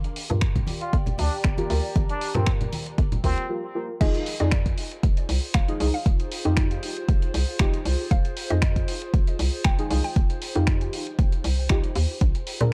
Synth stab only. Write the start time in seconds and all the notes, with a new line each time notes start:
0.30 F4 G4 A#4
1.58 F4 G4 A#4
1.70 F4 G4 A#4
2.35 F4 G4 A#4
3.24 F4 G4 A#4
3.49 F4 G4 A#4
3.75 F4 G4 A#4
4.00 D#4 F4 G#4
4.40 D#4 F4 G#4
5.68 D#4 F4 G#4
5.80 D#4 F4 G#4
6.45 D#4 F4 G4
7.60 D#4 F4 G4
8.50 D#4 F4 G#4
9.78 D#4 F4 G#4
9.90 D#4 F4 G#4
10.55 D#4 F4 G4
11.70 D#4 F4 G4
12.60 D4 G#4 A#4